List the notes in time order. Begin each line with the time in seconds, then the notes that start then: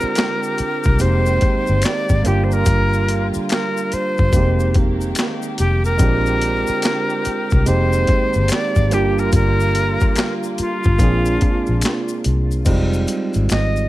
Already playing: D3 G#3 C4 D4 F4 G4 A#4
0.00 muted fingered electric bass stroke, maracas
0.15 finger snap, snare, clap, closed hi-hat, maracas
0.43 maracas
0.58 muted fingered electric bass stroke, closed hi-hat, maracas
0.84 C2, kick, maracas
0.99 F1 D#3 G#3 A#3 C4 D#4 G4 C5, closed hi-hat, maracas
1.26 maracas
1.41 muted fingered electric bass stroke, kick, closed hi-hat
1.67 G1, maracas
1.82 D5, finger snap, snare, closed hi-hat, maracas
1.86 clap
2.09 G#1, kick, maracas
2.23 G1 D3 G3 A#3 D4 F4 G4, closed hi-hat, maracas
2.28 G4
2.44 C5
2.52 A#4, maracas
2.66 G1, kick, closed hi-hat, maracas
2.93 maracas
3.09 closed hi-hat
3.34 muted fingered electric bass stroke, maracas
3.49 A#4, finger snap, snare, clap, closed hi-hat, maracas
3.77 maracas
3.92 C5, muted fingered electric bass stroke, closed hi-hat, maracas
4.18 G1, kick, maracas
4.31 F1 D#3 G3 G#3 A#3 C4 D#4 G4, kick, closed hi-hat, maracas
4.36 G#3 G4
4.60 maracas
4.74 kick, closed hi-hat
5.01 maracas
5.15 finger snap, snare, closed hi-hat, maracas
5.19 clap
5.42 maracas
5.58 F1 G4, closed hi-hat, maracas
5.85 A#4, maracas
5.98 A#1 D3 G#3 C4 D4 F4, kick, closed hi-hat, maracas
6.03 G4
6.26 maracas
6.42 closed hi-hat
6.67 muted fingered electric bass stroke, maracas
6.82 finger snap, snare, clap, closed hi-hat, maracas
7.10 maracas
7.25 muted fingered electric bass stroke, closed hi-hat, maracas
7.50 C2, kick, maracas
7.66 F1 D#3 G#3 A#3 C4 D#4 G4 C5, closed hi-hat, maracas
7.93 maracas
8.07 muted fingered electric bass stroke, kick, closed hi-hat
8.33 G1, maracas
8.48 D5, finger snap, snare, closed hi-hat, maracas
8.52 clap
8.75 G#1, kick, maracas
8.90 G1 D3 G3 A#3 D4 F4 G4, closed hi-hat, maracas
8.95 G4
9.18 A#4, maracas
9.32 G1 A#4, kick, closed hi-hat, maracas
9.60 maracas
9.75 closed hi-hat
10.00 muted fingered electric bass stroke, kick, maracas
10.16 finger snap, snare, clap, closed hi-hat, maracas
10.43 maracas
10.58 F4, muted fingered electric bass stroke, closed hi-hat, maracas
10.84 G1, kick, maracas
10.98 A#1 C3 G#3 A#3 C4 D4 F4, kick, closed hi-hat, maracas
11.03 G#4
11.25 maracas
11.41 kick, closed hi-hat
11.67 A#1, maracas
11.81 finger snap, snare, closed hi-hat, maracas
11.86 clap
12.08 maracas
12.24 C2, closed hi-hat, maracas
12.51 maracas
12.65 F1 G#3 C4 D#4 F4, kick, closed hi-hat, crash, maracas
12.70 G3
12.93 maracas
13.08 closed hi-hat, maracas
13.34 G#1, closed hi-hat, maracas
13.49 G#1 D#5, finger snap, snare, clap, closed hi-hat, maracas
13.76 maracas